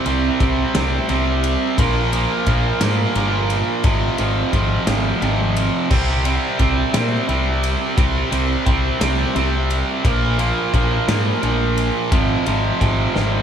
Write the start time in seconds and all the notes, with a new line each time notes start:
0.06 C2 C3 G3 C4, ride
0.40 C2 C3 G3 C4, kick, ride
0.75 C2 C3 G3 C4, snare, ride
1.09 C2 C3 G3 C4, ride
1.44 ride
1.78 A#1 A#2 F3 A#3, kick, ride
2.13 A#2 F3 A#3, ride
2.46 A#1 A#2 F3 A#3, kick, ride
2.81 G#2 A#2 F3 A#3, snare, ride
3.15 G1 A#2 F3 A#3, ride
3.50 ride
3.84 G#1 F2 C3 F3, kick, ride
4.18 G#1 F2 C3 F3, ride
4.53 G#1 F2 C3 F3, kick, ride
4.87 G#1 F2 C3 F3, snare, ride
5.22 G#1 F2 C3 F3, ride
5.56 ride
5.91 C2 C3 G3 C4, kick, crash
6.25 C3 G3 C4, ride
6.59 C2 C3 G3 C4, kick, ride
6.94 A#2 C3 G3 C4, snare, ride
7.29 C2 C3 G3 C4, ride
7.63 ride
7.97 C2 C3 G3 C4, kick, ride
8.32 C2 C3 G3 C4, ride
8.66 C2 C3 G3 C4, kick, ride
9.00 C2 C3 G3 C4, snare, ride
9.35 C2 C3 G3 C4, ride
9.70 ride
10.05 A#1 A#2 F3 A#3, kick, ride
10.39 A#2 F3 A#3, ride
10.74 A#1 A#2 F3 A#3, kick, ride
11.08 G#2 A#2 F3 A#3, snare, ride
11.43 A#1 A#2 F3 A#3, ride
11.78 ride
12.12 G#1 F2 C3 F3, kick, ride
12.46 G#1 F2 C3 F3, ride
12.81 G#1 F2 C3 F3, kick, ride
13.15 G#1 F2 C3 F3, snare